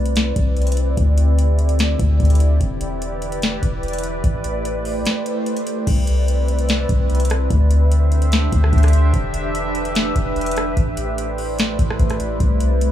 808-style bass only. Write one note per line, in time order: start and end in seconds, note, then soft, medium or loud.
0.00 0.32 C2 loud
0.36 0.95 C2 loud
0.97 1.95 D2 loud
1.99 2.19 D2 loud
2.20 2.59 D2 loud
2.61 3.59 E1 loud
3.63 4.21 E1 loud
4.24 5.02 A1 loud
5.87 6.85 C2 loud
6.89 7.48 C2 loud
7.50 8.48 D2 loud
8.52 8.72 D2 loud
8.73 9.12 D2 loud
9.14 10.12 E1 loud
10.16 10.75 E1 loud
10.77 11.75 A1 loud
11.79 11.99 A1 loud
12.00 12.39 A1 loud
12.40 12.92 C2 loud